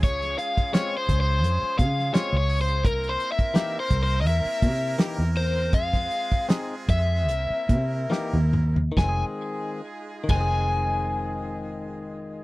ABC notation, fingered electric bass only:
X:1
M:4/4
L:1/16
Q:"Swing 16ths" 1/4=80
K:Fm
V:1 name="Fingered electric bass" clef=bass
D,,2 z4 D,,2 F,, z D,2 z D,,3 | C,,2 z4 C,,2 =E,, z C,2 z E,,3 | F,,2 z4 F,,2 C,, z C,2 z ^D,,3 | F,,, z4 z F,,,8- F,,,2 |]